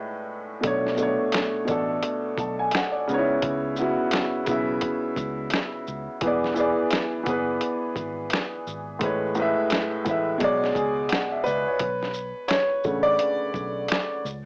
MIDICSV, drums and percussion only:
0, 0, Header, 1, 2, 480
1, 0, Start_track
1, 0, Tempo, 697674
1, 437, Time_signature, 4, 2, 24, 8
1, 9944, End_track
2, 0, Start_track
2, 0, Title_t, "Drums"
2, 436, Note_on_c, 9, 42, 89
2, 438, Note_on_c, 9, 36, 120
2, 505, Note_off_c, 9, 42, 0
2, 507, Note_off_c, 9, 36, 0
2, 595, Note_on_c, 9, 38, 36
2, 663, Note_off_c, 9, 38, 0
2, 670, Note_on_c, 9, 82, 54
2, 739, Note_off_c, 9, 82, 0
2, 910, Note_on_c, 9, 42, 78
2, 925, Note_on_c, 9, 26, 88
2, 927, Note_on_c, 9, 38, 112
2, 979, Note_off_c, 9, 42, 0
2, 994, Note_off_c, 9, 26, 0
2, 995, Note_off_c, 9, 38, 0
2, 1154, Note_on_c, 9, 42, 43
2, 1154, Note_on_c, 9, 82, 48
2, 1159, Note_on_c, 9, 36, 92
2, 1223, Note_off_c, 9, 42, 0
2, 1223, Note_off_c, 9, 82, 0
2, 1228, Note_off_c, 9, 36, 0
2, 1394, Note_on_c, 9, 42, 81
2, 1463, Note_off_c, 9, 42, 0
2, 1634, Note_on_c, 9, 36, 85
2, 1640, Note_on_c, 9, 42, 41
2, 1640, Note_on_c, 9, 82, 41
2, 1703, Note_off_c, 9, 36, 0
2, 1709, Note_off_c, 9, 42, 0
2, 1709, Note_off_c, 9, 82, 0
2, 1867, Note_on_c, 9, 42, 69
2, 1890, Note_on_c, 9, 26, 104
2, 1892, Note_on_c, 9, 38, 115
2, 1936, Note_off_c, 9, 42, 0
2, 1959, Note_off_c, 9, 26, 0
2, 1960, Note_off_c, 9, 38, 0
2, 2123, Note_on_c, 9, 82, 46
2, 2192, Note_off_c, 9, 82, 0
2, 2355, Note_on_c, 9, 42, 91
2, 2358, Note_on_c, 9, 36, 110
2, 2424, Note_off_c, 9, 42, 0
2, 2427, Note_off_c, 9, 36, 0
2, 2588, Note_on_c, 9, 82, 54
2, 2657, Note_off_c, 9, 82, 0
2, 2829, Note_on_c, 9, 42, 84
2, 2844, Note_on_c, 9, 26, 78
2, 2846, Note_on_c, 9, 38, 100
2, 2898, Note_off_c, 9, 42, 0
2, 2913, Note_off_c, 9, 26, 0
2, 2914, Note_off_c, 9, 38, 0
2, 3071, Note_on_c, 9, 42, 48
2, 3071, Note_on_c, 9, 82, 45
2, 3078, Note_on_c, 9, 36, 95
2, 3140, Note_off_c, 9, 42, 0
2, 3140, Note_off_c, 9, 82, 0
2, 3147, Note_off_c, 9, 36, 0
2, 3310, Note_on_c, 9, 42, 72
2, 3319, Note_on_c, 9, 36, 84
2, 3379, Note_off_c, 9, 42, 0
2, 3387, Note_off_c, 9, 36, 0
2, 3553, Note_on_c, 9, 36, 81
2, 3559, Note_on_c, 9, 42, 40
2, 3559, Note_on_c, 9, 82, 41
2, 3622, Note_off_c, 9, 36, 0
2, 3627, Note_off_c, 9, 42, 0
2, 3627, Note_off_c, 9, 82, 0
2, 3785, Note_on_c, 9, 42, 68
2, 3808, Note_on_c, 9, 26, 95
2, 3810, Note_on_c, 9, 38, 120
2, 3854, Note_off_c, 9, 42, 0
2, 3877, Note_off_c, 9, 26, 0
2, 3879, Note_off_c, 9, 38, 0
2, 4040, Note_on_c, 9, 82, 47
2, 4108, Note_off_c, 9, 82, 0
2, 4273, Note_on_c, 9, 42, 89
2, 4277, Note_on_c, 9, 36, 121
2, 4342, Note_off_c, 9, 42, 0
2, 4346, Note_off_c, 9, 36, 0
2, 4433, Note_on_c, 9, 38, 38
2, 4502, Note_off_c, 9, 38, 0
2, 4511, Note_on_c, 9, 82, 49
2, 4580, Note_off_c, 9, 82, 0
2, 4751, Note_on_c, 9, 42, 82
2, 4766, Note_on_c, 9, 26, 83
2, 4767, Note_on_c, 9, 38, 115
2, 4820, Note_off_c, 9, 42, 0
2, 4835, Note_off_c, 9, 26, 0
2, 4836, Note_off_c, 9, 38, 0
2, 4995, Note_on_c, 9, 42, 50
2, 4995, Note_on_c, 9, 82, 44
2, 4999, Note_on_c, 9, 36, 100
2, 5064, Note_off_c, 9, 42, 0
2, 5064, Note_off_c, 9, 82, 0
2, 5067, Note_off_c, 9, 36, 0
2, 5235, Note_on_c, 9, 42, 73
2, 5304, Note_off_c, 9, 42, 0
2, 5475, Note_on_c, 9, 36, 75
2, 5480, Note_on_c, 9, 42, 42
2, 5480, Note_on_c, 9, 82, 38
2, 5544, Note_off_c, 9, 36, 0
2, 5549, Note_off_c, 9, 42, 0
2, 5549, Note_off_c, 9, 82, 0
2, 5710, Note_on_c, 9, 42, 67
2, 5733, Note_on_c, 9, 26, 100
2, 5735, Note_on_c, 9, 38, 125
2, 5779, Note_off_c, 9, 42, 0
2, 5802, Note_off_c, 9, 26, 0
2, 5804, Note_off_c, 9, 38, 0
2, 5966, Note_on_c, 9, 82, 45
2, 6034, Note_off_c, 9, 82, 0
2, 6197, Note_on_c, 9, 42, 86
2, 6200, Note_on_c, 9, 36, 122
2, 6266, Note_off_c, 9, 42, 0
2, 6269, Note_off_c, 9, 36, 0
2, 6430, Note_on_c, 9, 82, 51
2, 6499, Note_off_c, 9, 82, 0
2, 6674, Note_on_c, 9, 42, 84
2, 6689, Note_on_c, 9, 26, 75
2, 6691, Note_on_c, 9, 38, 101
2, 6743, Note_off_c, 9, 42, 0
2, 6758, Note_off_c, 9, 26, 0
2, 6760, Note_off_c, 9, 38, 0
2, 6919, Note_on_c, 9, 42, 49
2, 6919, Note_on_c, 9, 82, 50
2, 6922, Note_on_c, 9, 36, 104
2, 6988, Note_off_c, 9, 42, 0
2, 6988, Note_off_c, 9, 82, 0
2, 6991, Note_off_c, 9, 36, 0
2, 7157, Note_on_c, 9, 42, 71
2, 7163, Note_on_c, 9, 36, 86
2, 7226, Note_off_c, 9, 42, 0
2, 7232, Note_off_c, 9, 36, 0
2, 7317, Note_on_c, 9, 38, 35
2, 7386, Note_off_c, 9, 38, 0
2, 7397, Note_on_c, 9, 36, 83
2, 7402, Note_on_c, 9, 42, 39
2, 7402, Note_on_c, 9, 82, 39
2, 7466, Note_off_c, 9, 36, 0
2, 7470, Note_off_c, 9, 42, 0
2, 7470, Note_off_c, 9, 82, 0
2, 7630, Note_on_c, 9, 42, 69
2, 7654, Note_on_c, 9, 26, 90
2, 7655, Note_on_c, 9, 38, 112
2, 7699, Note_off_c, 9, 42, 0
2, 7722, Note_off_c, 9, 26, 0
2, 7724, Note_off_c, 9, 38, 0
2, 7886, Note_on_c, 9, 82, 43
2, 7954, Note_off_c, 9, 82, 0
2, 8115, Note_on_c, 9, 42, 86
2, 8120, Note_on_c, 9, 36, 112
2, 8184, Note_off_c, 9, 42, 0
2, 8188, Note_off_c, 9, 36, 0
2, 8274, Note_on_c, 9, 38, 37
2, 8343, Note_off_c, 9, 38, 0
2, 8349, Note_on_c, 9, 82, 51
2, 8418, Note_off_c, 9, 82, 0
2, 8589, Note_on_c, 9, 42, 72
2, 8604, Note_on_c, 9, 26, 82
2, 8606, Note_on_c, 9, 38, 107
2, 8658, Note_off_c, 9, 42, 0
2, 8673, Note_off_c, 9, 26, 0
2, 8675, Note_off_c, 9, 38, 0
2, 8834, Note_on_c, 9, 82, 44
2, 8840, Note_on_c, 9, 36, 99
2, 8903, Note_off_c, 9, 82, 0
2, 8908, Note_off_c, 9, 36, 0
2, 9074, Note_on_c, 9, 42, 77
2, 9143, Note_off_c, 9, 42, 0
2, 9315, Note_on_c, 9, 36, 78
2, 9322, Note_on_c, 9, 82, 39
2, 9384, Note_off_c, 9, 36, 0
2, 9391, Note_off_c, 9, 82, 0
2, 9552, Note_on_c, 9, 42, 72
2, 9575, Note_on_c, 9, 26, 99
2, 9576, Note_on_c, 9, 38, 116
2, 9621, Note_off_c, 9, 42, 0
2, 9644, Note_off_c, 9, 26, 0
2, 9645, Note_off_c, 9, 38, 0
2, 9807, Note_on_c, 9, 82, 47
2, 9876, Note_off_c, 9, 82, 0
2, 9944, End_track
0, 0, End_of_file